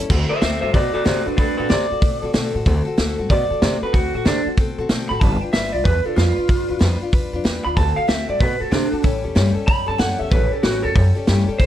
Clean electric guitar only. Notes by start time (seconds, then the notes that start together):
0.29 C5 E5
0.41 C5 E5
0.61 C5 E5
0.73 F#4 D5
0.94 F#4 D5
1.05 F#4 D5
1.26 D4 B4
1.37 D4 B4
1.57 D4 B4
1.70 D5
3.30 D5
3.83 B4
3.93 F#4
4.15 F#4
4.27 D4
5.09 B5
5.20 A5
5.41 G5
5.53 E5
5.73 D5
5.84 B4
6.05 A4
6.16 F4
7.65 B5
7.77 A5
7.96 F5
8.08 E5
8.30 D5
8.40 B4
8.61 A4
8.72 D4
9.67 B5
9.88 A5
9.99 F#5
10.19 E5
10.31 B4
10.52 A4
10.63 F#4
10.83 A4
11.59 C5